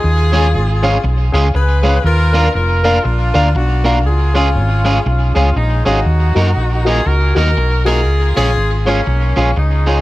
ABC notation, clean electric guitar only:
X:1
M:4/4
L:1/8
Q:"Swing" 1/4=120
K:Ebm
V:1 name="Clean electric guitar"
z [A,DFA] z [A,DFA] z [A,DFA] z [A,DFA] | z [B,=DFB] z [B,DFB] z [B,DFB] z [B,DFB] | z [A,DFA] z [A,DFA] z [A,DFA] z [A,DFA] | z [B,EGB] z [B,EGB] z [B,EGB] z [B,EGB] |
z [A,DFA] z [A,DFA] z [A,DFA] z [A,DFA] |]